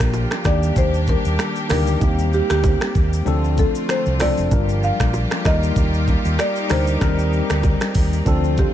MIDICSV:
0, 0, Header, 1, 6, 480
1, 0, Start_track
1, 0, Tempo, 625000
1, 1547, Time_signature, 4, 2, 24, 8
1, 6709, End_track
2, 0, Start_track
2, 0, Title_t, "Marimba"
2, 0, Program_c, 0, 12
2, 0, Note_on_c, 0, 70, 95
2, 322, Note_off_c, 0, 70, 0
2, 358, Note_on_c, 0, 74, 98
2, 576, Note_off_c, 0, 74, 0
2, 599, Note_on_c, 0, 72, 103
2, 840, Note_off_c, 0, 72, 0
2, 840, Note_on_c, 0, 70, 100
2, 1310, Note_off_c, 0, 70, 0
2, 1319, Note_on_c, 0, 70, 103
2, 1762, Note_off_c, 0, 70, 0
2, 1798, Note_on_c, 0, 67, 91
2, 1916, Note_off_c, 0, 67, 0
2, 1932, Note_on_c, 0, 67, 96
2, 2759, Note_on_c, 0, 69, 90
2, 2778, Note_off_c, 0, 67, 0
2, 2976, Note_off_c, 0, 69, 0
2, 2999, Note_on_c, 0, 72, 105
2, 3237, Note_on_c, 0, 74, 110
2, 3240, Note_off_c, 0, 72, 0
2, 3717, Note_on_c, 0, 77, 110
2, 3726, Note_off_c, 0, 74, 0
2, 4198, Note_on_c, 0, 75, 109
2, 4206, Note_off_c, 0, 77, 0
2, 4917, Note_on_c, 0, 74, 109
2, 4934, Note_off_c, 0, 75, 0
2, 5157, Note_on_c, 0, 72, 105
2, 5159, Note_off_c, 0, 74, 0
2, 6597, Note_on_c, 0, 67, 91
2, 6635, Note_off_c, 0, 72, 0
2, 6709, Note_off_c, 0, 67, 0
2, 6709, End_track
3, 0, Start_track
3, 0, Title_t, "Tine electric piano"
3, 0, Program_c, 1, 4
3, 0, Control_c, 1, 64, 127
3, 0, Note_on_c, 1, 53, 80
3, 0, Note_on_c, 1, 58, 71
3, 0, Note_on_c, 1, 62, 71
3, 0, Note_on_c, 1, 67, 87
3, 334, Note_off_c, 1, 58, 0
3, 337, Note_on_c, 1, 51, 77
3, 341, Note_off_c, 1, 62, 0
3, 342, Note_off_c, 1, 53, 0
3, 344, Note_on_c, 1, 58, 74
3, 347, Note_off_c, 1, 67, 0
3, 350, Note_on_c, 1, 62, 76
3, 356, Note_on_c, 1, 67, 89
3, 358, Control_c, 1, 64, 0
3, 492, Control_c, 1, 64, 127
3, 1222, Note_off_c, 1, 51, 0
3, 1225, Note_off_c, 1, 58, 0
3, 1228, Note_off_c, 1, 62, 0
3, 1231, Note_off_c, 1, 67, 0
3, 1298, Note_on_c, 1, 51, 78
3, 1304, Note_on_c, 1, 58, 68
3, 1311, Note_on_c, 1, 62, 69
3, 1317, Note_on_c, 1, 67, 84
3, 1522, Note_off_c, 1, 51, 0
3, 1525, Note_off_c, 1, 58, 0
3, 1529, Note_off_c, 1, 62, 0
3, 1532, Note_off_c, 1, 67, 0
3, 1538, Note_on_c, 1, 63, 79
3, 1544, Note_on_c, 1, 58, 71
3, 1551, Note_on_c, 1, 60, 72
3, 1557, Note_on_c, 1, 67, 89
3, 1558, Control_c, 1, 64, 0
3, 1713, Control_c, 1, 64, 127
3, 2422, Note_off_c, 1, 63, 0
3, 2425, Note_off_c, 1, 58, 0
3, 2429, Note_off_c, 1, 60, 0
3, 2432, Note_off_c, 1, 67, 0
3, 2497, Note_on_c, 1, 53, 93
3, 2504, Note_on_c, 1, 60, 91
3, 2510, Note_on_c, 1, 62, 91
3, 2516, Note_on_c, 1, 69, 106
3, 2517, Control_c, 1, 64, 0
3, 2639, Control_c, 1, 64, 127
3, 3162, Note_off_c, 1, 53, 0
3, 3165, Note_off_c, 1, 60, 0
3, 3168, Note_off_c, 1, 62, 0
3, 3171, Note_off_c, 1, 69, 0
3, 3218, Note_on_c, 1, 53, 79
3, 3225, Note_on_c, 1, 60, 72
3, 3231, Note_on_c, 1, 62, 72
3, 3238, Note_on_c, 1, 69, 84
3, 3442, Note_off_c, 1, 53, 0
3, 3446, Note_off_c, 1, 60, 0
3, 3449, Note_off_c, 1, 62, 0
3, 3452, Note_off_c, 1, 69, 0
3, 3458, Note_on_c, 1, 55, 79
3, 3465, Note_on_c, 1, 62, 72
3, 3471, Note_on_c, 1, 65, 69
3, 3477, Note_on_c, 1, 70, 88
3, 3478, Control_c, 1, 64, 0
3, 3629, Control_c, 1, 64, 127
3, 4169, Note_off_c, 1, 55, 0
3, 4178, Note_on_c, 1, 55, 81
3, 4184, Note_on_c, 1, 58, 74
3, 4186, Note_off_c, 1, 62, 0
3, 4187, Note_off_c, 1, 70, 0
3, 4189, Note_off_c, 1, 65, 0
3, 4190, Note_on_c, 1, 63, 74
3, 4197, Note_on_c, 1, 70, 88
3, 4198, Control_c, 1, 64, 0
3, 4328, Control_c, 1, 64, 127
3, 5062, Note_off_c, 1, 55, 0
3, 5065, Note_off_c, 1, 58, 0
3, 5068, Note_off_c, 1, 63, 0
3, 5072, Note_off_c, 1, 70, 0
3, 5138, Note_on_c, 1, 55, 76
3, 5144, Note_on_c, 1, 62, 73
3, 5150, Note_on_c, 1, 63, 72
3, 5157, Note_on_c, 1, 70, 86
3, 5362, Note_off_c, 1, 55, 0
3, 5365, Note_off_c, 1, 62, 0
3, 5369, Note_off_c, 1, 63, 0
3, 5372, Note_off_c, 1, 70, 0
3, 5378, Note_on_c, 1, 55, 77
3, 5384, Note_on_c, 1, 60, 68
3, 5390, Note_on_c, 1, 62, 55
3, 5396, Control_c, 1, 64, 0
3, 5396, Note_on_c, 1, 70, 88
3, 5440, Note_on_c, 1, 63, 72
3, 5443, Note_off_c, 1, 62, 0
3, 5532, Control_c, 1, 64, 127
3, 6262, Note_off_c, 1, 55, 0
3, 6265, Note_off_c, 1, 60, 0
3, 6271, Note_off_c, 1, 70, 0
3, 6293, Note_off_c, 1, 63, 0
3, 6338, Note_on_c, 1, 53, 96
3, 6344, Note_on_c, 1, 60, 86
3, 6351, Note_on_c, 1, 62, 86
3, 6357, Note_on_c, 1, 69, 105
3, 6358, Control_c, 1, 64, 0
3, 6514, Control_c, 1, 64, 127
3, 6709, Note_off_c, 1, 53, 0
3, 6709, Note_off_c, 1, 60, 0
3, 6709, Note_off_c, 1, 62, 0
3, 6709, Note_off_c, 1, 69, 0
3, 6709, End_track
4, 0, Start_track
4, 0, Title_t, "String section"
4, 0, Program_c, 2, 48
4, 0, Note_on_c, 2, 50, 78
4, 0, Note_on_c, 2, 58, 72
4, 0, Note_on_c, 2, 65, 70
4, 0, Note_on_c, 2, 67, 88
4, 340, Note_off_c, 2, 50, 0
4, 340, Note_off_c, 2, 65, 0
4, 346, Note_on_c, 2, 55, 84
4, 346, Note_on_c, 2, 62, 81
4, 1535, Note_off_c, 2, 62, 0
4, 1547, Note_on_c, 2, 60, 74
4, 2478, Note_off_c, 2, 58, 0
4, 2478, Note_off_c, 2, 67, 0
4, 2485, Note_off_c, 2, 55, 0
4, 2497, Note_off_c, 2, 60, 0
4, 2507, Note_on_c, 2, 50, 77
4, 2507, Note_on_c, 2, 57, 74
4, 2507, Note_on_c, 2, 60, 70
4, 2507, Note_on_c, 2, 65, 87
4, 3457, Note_off_c, 2, 50, 0
4, 3457, Note_off_c, 2, 57, 0
4, 3457, Note_off_c, 2, 60, 0
4, 3457, Note_off_c, 2, 65, 0
4, 3467, Note_on_c, 2, 53, 75
4, 3468, Note_on_c, 2, 58, 74
4, 3468, Note_on_c, 2, 65, 77
4, 3468, Note_on_c, 2, 67, 89
4, 4180, Note_off_c, 2, 53, 0
4, 4186, Note_on_c, 2, 63, 85
4, 5368, Note_off_c, 2, 65, 0
4, 5386, Note_on_c, 2, 60, 77
4, 6319, Note_off_c, 2, 58, 0
4, 6319, Note_off_c, 2, 67, 0
4, 6325, Note_off_c, 2, 63, 0
4, 6347, Note_on_c, 2, 57, 74
4, 6348, Note_on_c, 2, 50, 81
4, 6348, Note_on_c, 2, 65, 90
4, 6709, Note_off_c, 2, 50, 0
4, 6709, Note_off_c, 2, 57, 0
4, 6709, Note_off_c, 2, 60, 0
4, 6709, Note_off_c, 2, 65, 0
4, 6709, End_track
5, 0, Start_track
5, 0, Title_t, "Fingered electric bass"
5, 0, Program_c, 3, 33
5, 0, Note_on_c, 3, 34, 94
5, 188, Note_off_c, 3, 34, 0
5, 347, Note_on_c, 3, 39, 96
5, 536, Note_off_c, 3, 39, 0
5, 585, Note_on_c, 3, 39, 90
5, 880, Note_off_c, 3, 39, 0
5, 960, Note_on_c, 3, 39, 88
5, 1045, Note_off_c, 3, 39, 0
5, 1308, Note_on_c, 3, 38, 99
5, 1497, Note_off_c, 3, 38, 0
5, 1547, Note_on_c, 3, 39, 100
5, 1841, Note_off_c, 3, 39, 0
5, 1919, Note_on_c, 3, 38, 88
5, 2109, Note_off_c, 3, 38, 0
5, 2267, Note_on_c, 3, 39, 90
5, 2457, Note_off_c, 3, 39, 0
5, 2507, Note_on_c, 3, 38, 103
5, 2801, Note_off_c, 3, 38, 0
5, 3119, Note_on_c, 3, 36, 100
5, 3309, Note_off_c, 3, 36, 0
5, 3359, Note_on_c, 3, 29, 96
5, 3444, Note_off_c, 3, 29, 0
5, 3467, Note_on_c, 3, 31, 110
5, 3761, Note_off_c, 3, 31, 0
5, 3839, Note_on_c, 3, 34, 94
5, 4029, Note_off_c, 3, 34, 0
5, 4187, Note_on_c, 3, 39, 98
5, 4377, Note_off_c, 3, 39, 0
5, 4425, Note_on_c, 3, 39, 94
5, 4720, Note_off_c, 3, 39, 0
5, 4800, Note_on_c, 3, 39, 82
5, 4885, Note_off_c, 3, 39, 0
5, 5147, Note_on_c, 3, 38, 87
5, 5337, Note_off_c, 3, 38, 0
5, 5386, Note_on_c, 3, 39, 111
5, 5680, Note_off_c, 3, 39, 0
5, 5758, Note_on_c, 3, 38, 91
5, 5948, Note_off_c, 3, 38, 0
5, 6107, Note_on_c, 3, 39, 89
5, 6296, Note_off_c, 3, 39, 0
5, 6344, Note_on_c, 3, 38, 108
5, 6639, Note_off_c, 3, 38, 0
5, 6709, End_track
6, 0, Start_track
6, 0, Title_t, "Drums"
6, 0, Note_on_c, 9, 36, 91
6, 0, Note_on_c, 9, 37, 98
6, 0, Note_on_c, 9, 82, 108
6, 6, Note_on_c, 9, 26, 74
6, 75, Note_off_c, 9, 36, 0
6, 75, Note_off_c, 9, 82, 0
6, 76, Note_off_c, 9, 37, 0
6, 82, Note_off_c, 9, 26, 0
6, 103, Note_on_c, 9, 82, 74
6, 104, Note_on_c, 9, 60, 81
6, 180, Note_off_c, 9, 82, 0
6, 181, Note_off_c, 9, 60, 0
6, 236, Note_on_c, 9, 82, 66
6, 239, Note_on_c, 9, 37, 92
6, 245, Note_on_c, 9, 26, 74
6, 248, Note_on_c, 9, 61, 77
6, 313, Note_off_c, 9, 82, 0
6, 315, Note_off_c, 9, 37, 0
6, 322, Note_off_c, 9, 26, 0
6, 324, Note_off_c, 9, 61, 0
6, 342, Note_on_c, 9, 82, 62
6, 347, Note_on_c, 9, 36, 107
6, 347, Note_on_c, 9, 37, 96
6, 353, Note_on_c, 9, 26, 77
6, 419, Note_off_c, 9, 82, 0
6, 423, Note_off_c, 9, 37, 0
6, 424, Note_off_c, 9, 36, 0
6, 430, Note_off_c, 9, 26, 0
6, 483, Note_on_c, 9, 82, 83
6, 560, Note_off_c, 9, 82, 0
6, 585, Note_on_c, 9, 36, 99
6, 585, Note_on_c, 9, 64, 75
6, 586, Note_on_c, 9, 82, 78
6, 662, Note_off_c, 9, 36, 0
6, 662, Note_off_c, 9, 64, 0
6, 662, Note_off_c, 9, 82, 0
6, 722, Note_on_c, 9, 82, 46
6, 798, Note_off_c, 9, 82, 0
6, 823, Note_on_c, 9, 82, 52
6, 828, Note_on_c, 9, 36, 90
6, 836, Note_on_c, 9, 61, 84
6, 900, Note_off_c, 9, 82, 0
6, 904, Note_off_c, 9, 36, 0
6, 913, Note_off_c, 9, 61, 0
6, 959, Note_on_c, 9, 82, 92
6, 1036, Note_off_c, 9, 82, 0
6, 1067, Note_on_c, 9, 37, 98
6, 1067, Note_on_c, 9, 60, 72
6, 1068, Note_on_c, 9, 82, 71
6, 1073, Note_on_c, 9, 26, 75
6, 1144, Note_off_c, 9, 37, 0
6, 1144, Note_off_c, 9, 60, 0
6, 1145, Note_off_c, 9, 82, 0
6, 1150, Note_off_c, 9, 26, 0
6, 1196, Note_on_c, 9, 82, 52
6, 1273, Note_off_c, 9, 82, 0
6, 1302, Note_on_c, 9, 46, 80
6, 1302, Note_on_c, 9, 82, 58
6, 1307, Note_on_c, 9, 37, 95
6, 1313, Note_on_c, 9, 26, 72
6, 1318, Note_on_c, 9, 60, 54
6, 1318, Note_on_c, 9, 64, 76
6, 1379, Note_off_c, 9, 46, 0
6, 1379, Note_off_c, 9, 82, 0
6, 1383, Note_off_c, 9, 37, 0
6, 1390, Note_off_c, 9, 26, 0
6, 1395, Note_off_c, 9, 60, 0
6, 1395, Note_off_c, 9, 64, 0
6, 1437, Note_on_c, 9, 82, 87
6, 1445, Note_on_c, 9, 60, 50
6, 1514, Note_off_c, 9, 82, 0
6, 1522, Note_off_c, 9, 60, 0
6, 1546, Note_on_c, 9, 82, 90
6, 1547, Note_on_c, 9, 36, 106
6, 1547, Note_on_c, 9, 64, 76
6, 1623, Note_off_c, 9, 82, 0
6, 1624, Note_off_c, 9, 36, 0
6, 1624, Note_off_c, 9, 64, 0
6, 1680, Note_on_c, 9, 82, 56
6, 1757, Note_off_c, 9, 82, 0
6, 1789, Note_on_c, 9, 82, 58
6, 1866, Note_off_c, 9, 82, 0
6, 1919, Note_on_c, 9, 82, 107
6, 1920, Note_on_c, 9, 37, 97
6, 1926, Note_on_c, 9, 26, 73
6, 1996, Note_off_c, 9, 37, 0
6, 1996, Note_off_c, 9, 82, 0
6, 2003, Note_off_c, 9, 26, 0
6, 2024, Note_on_c, 9, 60, 83
6, 2025, Note_on_c, 9, 82, 76
6, 2026, Note_on_c, 9, 36, 103
6, 2101, Note_off_c, 9, 60, 0
6, 2101, Note_off_c, 9, 82, 0
6, 2103, Note_off_c, 9, 36, 0
6, 2157, Note_on_c, 9, 82, 67
6, 2160, Note_on_c, 9, 37, 95
6, 2166, Note_on_c, 9, 26, 78
6, 2167, Note_on_c, 9, 61, 75
6, 2234, Note_off_c, 9, 82, 0
6, 2236, Note_off_c, 9, 37, 0
6, 2243, Note_off_c, 9, 26, 0
6, 2244, Note_off_c, 9, 61, 0
6, 2264, Note_on_c, 9, 82, 60
6, 2267, Note_on_c, 9, 36, 108
6, 2340, Note_off_c, 9, 82, 0
6, 2344, Note_off_c, 9, 36, 0
6, 2404, Note_on_c, 9, 82, 82
6, 2481, Note_off_c, 9, 82, 0
6, 2504, Note_on_c, 9, 64, 76
6, 2507, Note_on_c, 9, 82, 80
6, 2581, Note_off_c, 9, 64, 0
6, 2583, Note_off_c, 9, 82, 0
6, 2643, Note_on_c, 9, 82, 46
6, 2720, Note_off_c, 9, 82, 0
6, 2745, Note_on_c, 9, 82, 55
6, 2748, Note_on_c, 9, 36, 89
6, 2755, Note_on_c, 9, 61, 84
6, 2822, Note_off_c, 9, 82, 0
6, 2825, Note_off_c, 9, 36, 0
6, 2832, Note_off_c, 9, 61, 0
6, 2881, Note_on_c, 9, 82, 91
6, 2958, Note_off_c, 9, 82, 0
6, 2986, Note_on_c, 9, 60, 75
6, 2987, Note_on_c, 9, 37, 100
6, 2989, Note_on_c, 9, 82, 75
6, 2994, Note_on_c, 9, 26, 74
6, 3063, Note_off_c, 9, 60, 0
6, 3064, Note_off_c, 9, 37, 0
6, 3066, Note_off_c, 9, 82, 0
6, 3071, Note_off_c, 9, 26, 0
6, 3117, Note_on_c, 9, 82, 50
6, 3194, Note_off_c, 9, 82, 0
6, 3223, Note_on_c, 9, 46, 80
6, 3223, Note_on_c, 9, 82, 57
6, 3227, Note_on_c, 9, 37, 96
6, 3234, Note_on_c, 9, 26, 77
6, 3238, Note_on_c, 9, 60, 55
6, 3238, Note_on_c, 9, 64, 80
6, 3300, Note_off_c, 9, 46, 0
6, 3300, Note_off_c, 9, 82, 0
6, 3304, Note_off_c, 9, 37, 0
6, 3310, Note_off_c, 9, 26, 0
6, 3315, Note_off_c, 9, 60, 0
6, 3315, Note_off_c, 9, 64, 0
6, 3358, Note_on_c, 9, 82, 89
6, 3365, Note_on_c, 9, 60, 50
6, 3435, Note_off_c, 9, 82, 0
6, 3441, Note_off_c, 9, 60, 0
6, 3467, Note_on_c, 9, 36, 110
6, 3467, Note_on_c, 9, 64, 80
6, 3467, Note_on_c, 9, 82, 92
6, 3544, Note_off_c, 9, 36, 0
6, 3544, Note_off_c, 9, 64, 0
6, 3544, Note_off_c, 9, 82, 0
6, 3601, Note_on_c, 9, 82, 57
6, 3678, Note_off_c, 9, 82, 0
6, 3710, Note_on_c, 9, 82, 59
6, 3787, Note_off_c, 9, 82, 0
6, 3839, Note_on_c, 9, 36, 91
6, 3840, Note_on_c, 9, 37, 96
6, 3840, Note_on_c, 9, 82, 114
6, 3847, Note_on_c, 9, 26, 79
6, 3916, Note_off_c, 9, 36, 0
6, 3916, Note_off_c, 9, 82, 0
6, 3917, Note_off_c, 9, 37, 0
6, 3924, Note_off_c, 9, 26, 0
6, 3944, Note_on_c, 9, 60, 82
6, 3945, Note_on_c, 9, 82, 71
6, 4021, Note_off_c, 9, 60, 0
6, 4022, Note_off_c, 9, 82, 0
6, 4077, Note_on_c, 9, 82, 64
6, 4080, Note_on_c, 9, 37, 93
6, 4086, Note_on_c, 9, 26, 77
6, 4086, Note_on_c, 9, 61, 75
6, 4154, Note_off_c, 9, 82, 0
6, 4157, Note_off_c, 9, 37, 0
6, 4163, Note_off_c, 9, 26, 0
6, 4163, Note_off_c, 9, 61, 0
6, 4184, Note_on_c, 9, 82, 60
6, 4187, Note_on_c, 9, 36, 110
6, 4188, Note_on_c, 9, 37, 97
6, 4195, Note_on_c, 9, 26, 76
6, 4260, Note_off_c, 9, 82, 0
6, 4264, Note_off_c, 9, 36, 0
6, 4265, Note_off_c, 9, 37, 0
6, 4272, Note_off_c, 9, 26, 0
6, 4324, Note_on_c, 9, 82, 83
6, 4401, Note_off_c, 9, 82, 0
6, 4424, Note_on_c, 9, 64, 74
6, 4425, Note_on_c, 9, 36, 97
6, 4426, Note_on_c, 9, 82, 81
6, 4501, Note_off_c, 9, 64, 0
6, 4502, Note_off_c, 9, 36, 0
6, 4503, Note_off_c, 9, 82, 0
6, 4563, Note_on_c, 9, 82, 50
6, 4639, Note_off_c, 9, 82, 0
6, 4664, Note_on_c, 9, 82, 54
6, 4668, Note_on_c, 9, 36, 95
6, 4675, Note_on_c, 9, 61, 81
6, 4741, Note_off_c, 9, 82, 0
6, 4745, Note_off_c, 9, 36, 0
6, 4752, Note_off_c, 9, 61, 0
6, 4799, Note_on_c, 9, 82, 99
6, 4876, Note_off_c, 9, 82, 0
6, 4905, Note_on_c, 9, 60, 77
6, 4907, Note_on_c, 9, 37, 99
6, 4909, Note_on_c, 9, 82, 76
6, 4913, Note_on_c, 9, 26, 76
6, 4982, Note_off_c, 9, 60, 0
6, 4984, Note_off_c, 9, 37, 0
6, 4985, Note_off_c, 9, 82, 0
6, 4990, Note_off_c, 9, 26, 0
6, 5036, Note_on_c, 9, 82, 50
6, 5113, Note_off_c, 9, 82, 0
6, 5142, Note_on_c, 9, 46, 81
6, 5142, Note_on_c, 9, 82, 56
6, 5146, Note_on_c, 9, 37, 94
6, 5153, Note_on_c, 9, 26, 80
6, 5157, Note_on_c, 9, 60, 55
6, 5157, Note_on_c, 9, 64, 75
6, 5219, Note_off_c, 9, 46, 0
6, 5219, Note_off_c, 9, 82, 0
6, 5223, Note_off_c, 9, 37, 0
6, 5230, Note_off_c, 9, 26, 0
6, 5234, Note_off_c, 9, 60, 0
6, 5234, Note_off_c, 9, 64, 0
6, 5277, Note_on_c, 9, 82, 93
6, 5283, Note_on_c, 9, 60, 49
6, 5354, Note_off_c, 9, 82, 0
6, 5360, Note_off_c, 9, 60, 0
6, 5385, Note_on_c, 9, 64, 77
6, 5386, Note_on_c, 9, 37, 90
6, 5386, Note_on_c, 9, 82, 92
6, 5387, Note_on_c, 9, 36, 110
6, 5393, Note_on_c, 9, 26, 77
6, 5462, Note_off_c, 9, 64, 0
6, 5463, Note_off_c, 9, 36, 0
6, 5463, Note_off_c, 9, 37, 0
6, 5463, Note_off_c, 9, 82, 0
6, 5470, Note_off_c, 9, 26, 0
6, 5520, Note_on_c, 9, 82, 56
6, 5597, Note_off_c, 9, 82, 0
6, 5629, Note_on_c, 9, 82, 58
6, 5706, Note_off_c, 9, 82, 0
6, 5759, Note_on_c, 9, 37, 98
6, 5759, Note_on_c, 9, 82, 113
6, 5766, Note_on_c, 9, 26, 76
6, 5835, Note_off_c, 9, 82, 0
6, 5836, Note_off_c, 9, 37, 0
6, 5843, Note_off_c, 9, 26, 0
6, 5863, Note_on_c, 9, 60, 82
6, 5864, Note_on_c, 9, 82, 74
6, 5866, Note_on_c, 9, 36, 102
6, 5939, Note_off_c, 9, 60, 0
6, 5941, Note_off_c, 9, 82, 0
6, 5943, Note_off_c, 9, 36, 0
6, 5996, Note_on_c, 9, 82, 62
6, 5999, Note_on_c, 9, 37, 93
6, 6005, Note_on_c, 9, 26, 76
6, 6006, Note_on_c, 9, 61, 75
6, 6073, Note_off_c, 9, 82, 0
6, 6076, Note_off_c, 9, 37, 0
6, 6082, Note_off_c, 9, 26, 0
6, 6083, Note_off_c, 9, 61, 0
6, 6102, Note_on_c, 9, 46, 80
6, 6102, Note_on_c, 9, 82, 62
6, 6107, Note_on_c, 9, 36, 108
6, 6179, Note_off_c, 9, 46, 0
6, 6179, Note_off_c, 9, 82, 0
6, 6183, Note_off_c, 9, 36, 0
6, 6243, Note_on_c, 9, 82, 86
6, 6320, Note_off_c, 9, 82, 0
6, 6344, Note_on_c, 9, 64, 73
6, 6345, Note_on_c, 9, 36, 98
6, 6346, Note_on_c, 9, 82, 80
6, 6420, Note_off_c, 9, 64, 0
6, 6421, Note_off_c, 9, 36, 0
6, 6422, Note_off_c, 9, 82, 0
6, 6482, Note_on_c, 9, 82, 49
6, 6559, Note_off_c, 9, 82, 0
6, 6584, Note_on_c, 9, 82, 56
6, 6588, Note_on_c, 9, 36, 89
6, 6595, Note_on_c, 9, 61, 82
6, 6660, Note_off_c, 9, 82, 0
6, 6664, Note_off_c, 9, 36, 0
6, 6671, Note_off_c, 9, 61, 0
6, 6709, End_track
0, 0, End_of_file